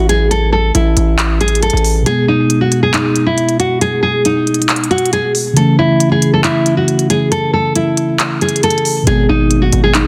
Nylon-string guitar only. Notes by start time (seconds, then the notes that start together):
0.09 G#4
0.31 A4
0.52 A4
0.75 E4
1.41 G#4
1.63 A4
2.06 G#4
2.28 D#4
2.61 F#4
2.83 G#4
2.94 D#4
3.26 E4
3.60 F#4
3.81 G#4
4.03 G#4
4.25 D#4
4.91 F#4
5.13 G#4
5.57 A4
5.79 E4
6.12 G#4
6.34 A4
6.44 E4
6.77 F#4
7.10 G#4
7.32 A4
7.53 A4
7.76 E4
8.42 G#4
8.64 A4
9.07 G#4
9.29 D#4
9.62 F#4
9.84 G#4
9.95 D#4